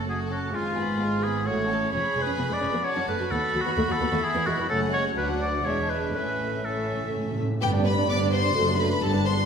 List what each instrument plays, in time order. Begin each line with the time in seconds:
Already playing: double bass section F#1, cello section F#2
0.07 viola section A3, violin section F#4 F#5, oboe G#4
0.30 viola section C#4, oboe F#4, violin section A4 A5
0.54 double bass section G#1, cello section G#2, viola section G#3, violin section F4 G#5, oboe F4
0.77 viola section B3, violin section G#4 B5
1.00 viola section G#3, violin section F4 G#5
1.23 viola section B3, violin section G#4 B5, oboe G#4
1.46 double bass section A1, cello section A2, viola section A3, violin section F#4 F#5, oboe C#5
1.69 viola section C#4, violin section A4 A5
1.92 double bass section F1, cello section F2, viola section C#4, violin section G#4 B5, oboe C#5
2.15 double bass section F1, cello section F2, viola section G#3
2.22 oboe B4
2.26 cello section F2, viola section C#4
2.38 double bass section F1, cello section F2, viola section B3
2.50 cello section F2, viola section G#3, oboe D5
2.61 double bass section F1, cello section F2, viola section C#4
2.72 cello section F2, viola section B3
2.84 violin section F#4 A5, oboe C#5
2.96 cello section F#2, viola section C#4
3.08 double bass section F#1, cello section F#2, viola section A3, oboe B4
3.19 cello section F#2, viola section F#3
3.31 cello section D#2, double bass section D#2, viola section B3, oboe A4, violin section B5
3.54 cello section D#2, double bass section D#2, viola section F#3
3.61 viola section B3, oboe F#4
3.66 cello section D#2
3.77 double bass section D#2, cello section D#2, viola section A3
3.88 cello section D#2, viola section F#3, oboe A4
4.00 double bass section D#2, cello section D#2, viola section B3
4.11 cello section D#2, viola section A3
4.23 violin section E4, oboe G#4
4.34 cello section E2, viola section B3
4.46 double bass section E1, cello section E2, viola section G#3, oboe F#4
4.58 cello section E2, viola section E3
4.69 double bass section F#1, cello section F#2, viola section A3, violin section C#4 F#5, oboe A4
4.93 viola section G#3, oboe C#5
5.17 cello section D2, double bass section D2, viola section F#3, violin section D4 F#5, oboe B4
5.41 oboe D5
5.64 double bass section E1, cello section E2, viola section G#3, violin section D4 E5, oboe C#5
5.90 oboe B4
6.15 double bass section A1, cello section A2, viola section A3, violin section C#4 E5, oboe B4
6.31 timpani A2
6.38 timpani A2
6.47 timpani A2
6.54 timpani A2
6.62 timpani A2, viola section A3, violin section C#4 E5, oboe A4
6.70 timpani A2
6.77 timpani A2
6.85 timpani A2
6.93 timpani A2
7.01 timpani A2
7.09 timpani A2
7.16 timpani A2
7.24 timpani A2
7.32 timpani A2
7.40 timpani A2
7.48 timpani A2
7.61 double bass section G1, cello section G2, viola section B3 B4, french horn section B3 G4, violin section G4 G5
7.73 viola section D4 D5
7.85 viola section B3 B4, violin section B4 B5
7.97 viola section D4 D5
8.09 double bass section G1, cello section G2, viola section B3 B4, violin section D5 D6
8.20 viola section D4 D5
8.32 viola section B3 B4, violin section C5 C6
8.44 viola section D4 D5
8.55 double bass section F#1, cello section F#2, french horn section A3 D4, viola section F#4 A4
8.67 viola section D4 F#4
8.78 viola section F#4 A4, violin section B4 B5
8.90 viola section D4 F#4
9.02 double bass section G1, timpani G2, cello section G2, french horn section G3, viola section B3 G4, violin section A4 A5
9.14 viola section D4 B4
9.25 viola section B3 G4, violin section C5 C6
9.37 viola section D4 B4